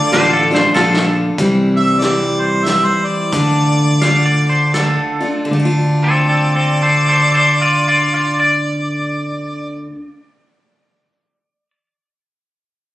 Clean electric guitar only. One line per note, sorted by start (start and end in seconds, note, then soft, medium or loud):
0.13 0.33 C5 loud
0.33 0.54 A4 medium
0.55 0.74 C5 medium
0.75 1.24 A4 loud
4.02 4.25 F5 medium
4.25 4.49 D5 medium
4.49 4.73 C5 medium
4.74 5.34 A4 medium
6.03 6.28 C4 medium
6.03 6.28 A4 medium
6.29 6.54 C4 medium
6.29 6.55 A4 medium
6.56 6.80 C4 medium
6.56 6.81 A4 medium
6.82 7.07 A4 medium
6.82 7.08 C5 medium
7.09 7.33 A4 medium
7.09 7.34 C5 medium
7.34 7.59 A4 medium
7.34 7.61 C5 medium
7.61 7.86 F4 medium
7.61 7.87 D5 medium
7.88 8.12 F4 medium
7.88 8.13 D5 medium
8.14 8.39 F4 medium
8.14 8.38 D5 medium
8.40 11.70 D5 medium